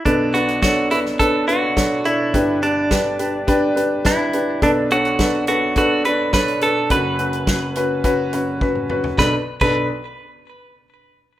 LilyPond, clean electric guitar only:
\new Staff \with { instrumentName = "Clean electric guitar" } { \time 4/4 \key b \minor \tempo 4 = 105 d'8 fis'8 fis'8 e'8 a'8 fis'4 e'8~ | e'8 d'2 r8 e'4 | d'8 fis'4 fis'8 fis'8 b'8 b'8 a'8 | b'2.~ b'8 r8 |
b'16 r8 b'8 r2 r8. | }